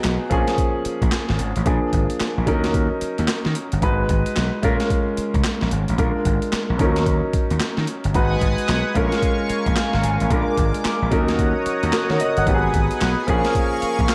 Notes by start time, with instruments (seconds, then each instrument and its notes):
Already playing: grand piano F#3 B3 D#4 G#4
0.04 slap bass B1, snare, clap, closed hi-hat
0.30 slap bass A#1, grand piano F3 A#3 C#4 G#4, kick, closed hi-hat
0.47 snare, closed hi-hat
0.58 kick, closed hi-hat
0.85 muted slap bass stroke, closed hi-hat
1.02 slap bass A#1, kick, closed hi-hat
1.12 snare, clap, closed hi-hat
1.29 slap bass G#1, snare
1.39 slap bass G#1, closed hi-hat
1.56 slap bass A1, closed hi-hat
1.65 slap bass A#1, grand piano F3 A#3 D4 G#4, kick, closed hi-hat
1.93 slap bass G#1, kick, closed hi-hat
2.10 closed hi-hat
2.20 muted slap bass stroke, snare, clap, closed hi-hat
2.38 slap bass A#1
2.46 slap bass D#2, grand piano F#3 C#4 D#4 A#4, kick, closed hi-hat
2.64 snare, closed hi-hat
2.74 kick, closed hi-hat
3.01 muted slap bass stroke, closed hi-hat
3.18 slap bass D#2, closed hi-hat
3.28 snare, clap, closed hi-hat
3.45 slap bass D#3, snare
3.55 closed hi-hat
3.72 slap bass G1, closed hi-hat
3.82 slap bass G#1, grand piano G#3 D#4 F#4 B4, kick, closed hi-hat
4.09 slap bass G#1, kick, closed hi-hat
4.26 closed hi-hat
4.36 slap bass B1, snare, clap, closed hi-hat
4.62 slap bass A#2, grand piano G#3 C#4 F4 A#4, kick, closed hi-hat
4.80 snare, closed hi-hat
4.90 kick, closed hi-hat
5.17 muted slap bass stroke, closed hi-hat
5.34 slap bass C#2, kick, closed hi-hat
5.44 snare, clap, closed hi-hat
5.61 slap bass A#1, snare
5.71 slap bass G#1, closed hi-hat
5.88 slap bass A1, closed hi-hat
5.98 slap bass A#1, grand piano G#3 D4 F4 A#4, kick, closed hi-hat
6.25 slap bass G#1, kick, closed hi-hat
6.42 closed hi-hat
6.52 muted slap bass stroke, snare, clap, closed hi-hat
6.70 slap bass A#1
6.79 slap bass D#2, grand piano F3 C#4 D#4 A#4, kick, closed hi-hat
6.85 grand piano F#3
6.96 snare, closed hi-hat
7.06 kick, closed hi-hat
7.33 muted slap bass stroke, kick, closed hi-hat
7.50 slap bass D#2, closed hi-hat
7.60 snare, clap, closed hi-hat
7.77 slap bass D#3, snare
7.87 closed hi-hat
8.04 slap bass G1, closed hi-hat
8.14 slap bass G#1, grand piano G#3 D#4 F#4 B4, analog synth pad B4 F#5 G#5 D#6, kick, closed hi-hat
8.41 slap bass G#1, kick, closed hi-hat
8.58 closed hi-hat
8.68 slap bass B1, snare, clap, closed hi-hat
8.94 slap bass A#1, grand piano G#3 C#4 F4 A#4, analog synth pad A#4 F5 G#5 C#6, kick, closed hi-hat
9.12 snare, closed hi-hat
9.23 kick, closed hi-hat
9.50 muted slap bass stroke, closed hi-hat
9.66 slap bass A#1, kick, closed hi-hat
9.76 snare, clap, closed hi-hat
9.93 slap bass G#1, snare
10.03 slap bass G#1, closed hi-hat
10.20 slap bass A1, closed hi-hat
10.30 slap bass A#1, grand piano G#3 D4 F4 A#4, analog synth pad D6, kick, closed hi-hat
10.57 slap bass G#1, kick, closed hi-hat
10.74 closed hi-hat
10.85 muted slap bass stroke, snare, clap, closed hi-hat
11.02 slap bass A#1
11.11 slap bass D#2, grand piano F#3 C#4 D#4 A#4, analog synth pad C#5 F#5 A#5 D#6, kick, closed hi-hat
11.28 snare, closed hi-hat
11.39 kick, closed hi-hat
11.66 muted slap bass stroke, closed hi-hat
11.83 slap bass D#2, closed hi-hat
11.93 grand piano F#4 A#4, snare, clap, closed hi-hat
12.10 slap bass D#3, grand piano A#4 C#5, snare
12.20 grand piano D#5, closed hi-hat
12.37 slap bass G1, grand piano D#5 F#5, closed hi-hat
12.47 slap bass G#1, grand piano F#3 B3 D#4 G4, analog synth pad B4 G#5, kick, closed hi-hat
12.54 grand piano G#4
12.74 slap bass G#1, kick, closed hi-hat
12.91 closed hi-hat
13.01 slap bass B1, snare, clap, closed hi-hat
13.27 slap bass A#1, grand piano F3 A#3 C#4 G#4, analog synth pad A#4 F5 C#6, kick, closed hi-hat
13.45 snare, closed hi-hat
13.55 kick, closed hi-hat
13.82 muted slap bass stroke, closed hi-hat
13.99 slap bass A#1, kick, closed hi-hat
14.09 snare, clap, closed hi-hat